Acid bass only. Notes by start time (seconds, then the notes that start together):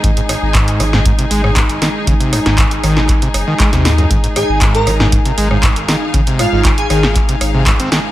0.04 G#2
0.17 G#2
0.29 G#1
0.55 G#2
0.80 G#3
0.93 G#2
1.05 G#2
1.19 C3
1.31 G#3
1.44 G#2
1.56 G#2
1.82 D#3
2.07 C#3
2.20 C3
2.33 G#2
2.46 G#2
2.58 G#2
2.83 D#3
2.97 G#2
3.22 C3
3.48 D#3
3.60 G#3
3.73 C3
3.85 G#2
3.98 F#2
4.11 G#2
4.24 G#2
4.36 G#1
4.61 G#2
4.87 G#3
5.00 G#2
5.12 G#2
5.25 C3
5.38 G#3
5.51 G#2
5.63 G#2
5.88 D#3
6.14 C#3
6.27 C3
6.39 G#2
6.53 G#2
6.65 G#2
6.90 D#3
7.03 G#2
7.29 C3
7.54 C3
7.67 G#2
7.80 C4
7.92 D#3